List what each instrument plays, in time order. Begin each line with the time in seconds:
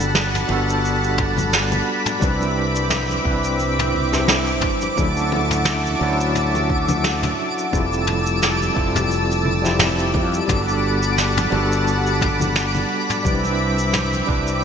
Already playing: fretless electric bass G1, tine electric piano G3 B3 D4 F#4 A4, analog synth pad G3 F#5 A5 B5, synth texture D6
0.00 muted conga, shaker
0.15 snare, shaker
0.35 mid tom, high conga, shaker
0.47 fretless electric bass G1, tine electric piano G3 B3 D4 F#4, muted conga
0.52 tine electric piano A4
0.69 shaker
0.85 shaker
1.03 shaker
1.18 kick, mid tom, muted conga
1.37 high conga, low conga, shaker
1.53 snare, shaker
1.71 muted conga, low conga, shaker
2.06 mid tom, shaker
2.19 fretless electric bass C2, tine electric piano G3 C4 D4 E4, analog synth pad C4 E5 D6, kick, high conga, shaker
2.24 tine electric piano B4
2.41 muted conga, shaker
2.76 shaker
2.90 snare, mid tom, muted conga, shaker
3.09 high conga, shaker
3.23 fretless electric bass C2, tine electric piano G3 C4 D4 E4, kick
3.27 tine electric piano B4
3.44 shaker
3.59 muted conga, shaker
3.79 mid tom, shaker
3.94 low conga
4.12 tine electric piano G3 C4 D4 E4 C5, snare, muted conga, high conga, shaker
4.28 snare, shaker
4.47 shaker
4.61 fretless electric bass G1, kick, mid tom
4.81 muted conga, shaker
4.96 fretless electric bass D2, tine electric piano F#3 C#4 D4 E4, analog synth pad F#4 E5 A5, kick, high conga, shaker
5.00 tine electric piano A4
5.17 shaker
5.32 muted conga
5.51 mid tom, shaker
5.65 snare, shaker
5.86 high conga, shaker
5.99 fretless electric bass D2, tine electric piano F#3 C#4 D4 E4, muted conga
6.04 tine electric piano F#4
6.20 shaker
6.35 mid tom, shaker
6.55 muted conga, shaker
6.70 kick
6.88 high conga, low conga, shaker
7.04 snare, shaker
7.23 mid tom, muted conga, low conga, shaker
7.58 shaker
7.71 fretless electric bass F1, tine electric piano G3 C4 E4 F4, analog synth pad G3 A5 E6, kick, muted conga, high conga, shaker
7.75 tine electric piano A4
7.93 shaker
8.07 mid tom
8.26 shaker
8.42 snare, muted conga, shaker
8.62 high conga, shaker
8.74 fretless electric bass F1, tine electric piano G3 C4 E4 F4, kick
8.79 tine electric piano A4
8.96 mid tom, muted conga, shaker
9.11 shaker
9.31 shaker
9.45 low conga
9.62 tine electric piano G3 C4 E4 F4, snare, muted conga, high conga, shaker
9.67 tine electric piano G4
9.79 snare, mid tom, shaker
9.99 shaker
10.14 fretless electric bass F2, kick, muted conga
10.34 shaker
10.47 fretless electric bass G1, tine electric piano G3 B3 D4 F#4, analog synth pad F#5 A5 B5, kick, mid tom, high conga, shaker
10.51 tine electric piano A4
10.68 shaker
11.03 muted conga, shaker
11.18 snare, shaker
11.37 mid tom, high conga, shaker
11.50 fretless electric bass G1, tine electric piano G3 B3 D4 F#4, muted conga
11.55 tine electric piano A4
11.72 shaker
11.87 shaker
12.06 shaker
12.21 kick, mid tom, muted conga
12.40 high conga, low conga, shaker
12.55 snare, shaker
12.74 muted conga, low conga, shaker
13.10 mid tom, shaker
13.23 fretless electric bass C2, tine electric piano G3 C4 D4 E4, analog synth pad C4 E5 D6, kick, high conga, shaker
13.28 tine electric piano B4
13.44 muted conga, shaker
13.78 shaker
13.93 snare, mid tom, muted conga, shaker
14.13 high conga, shaker
14.26 fretless electric bass C2, tine electric piano G3 C4 D4 E4, kick
14.30 tine electric piano B4
14.47 shaker